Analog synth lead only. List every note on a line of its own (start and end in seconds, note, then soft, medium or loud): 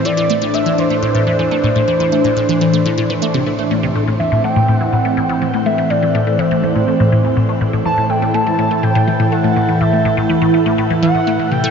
0.05 0.56 D5 loud
0.54 0.80 E5 loud
0.79 3.47 C5 loud
4.19 4.42 E5 loud
4.44 4.78 G5 loud
4.78 4.93 F#5 loud
4.93 5.42 F#5 loud
5.66 5.92 E5 loud
5.90 6.40 D5 loud
6.39 6.63 C5 loud
6.63 7.57 C5 loud
7.85 8.11 A5 loud
8.10 8.36 G5 loud
8.34 8.85 A5 loud
8.83 9.33 G5 loud
9.32 9.82 F#5 loud
9.81 10.29 E5 medium
11.03 11.53 F#5 loud
11.52 11.71 G5 loud